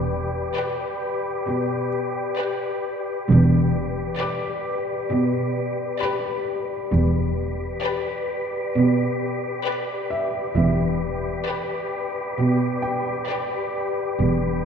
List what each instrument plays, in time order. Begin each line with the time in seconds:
Already playing: double bass section E1, cello section E2, synth texture G4 B4 D5, grand piano B5 D6
0.56 violin section G4 B4 D5
1.47 cello section B2
2.38 violin section G4 B4 D5
3.28 double bass section E1, cello section E2, synth texture G4 B4 D5
4.20 violin section G4 B4 D5, grand piano D6
5.11 cello section B2
6.01 violin section G4 B4 D5, grand piano B5
6.93 double bass section E1, cello section E2, synth texture G4 B4 D5
7.83 violin section G4 B4 D5
8.74 cello section B2
9.65 violin section G4 B4 D5
10.10 grand piano E5
10.55 double bass section E1, cello section E2, synth texture G4 B4 D5, grand piano E5
11.46 violin section G4 B4 D5
12.39 cello section B2
12.82 grand piano G5
13.27 violin section G4 B4 D5
14.19 double bass section E1, cello section E2, synth texture G4 B4 D5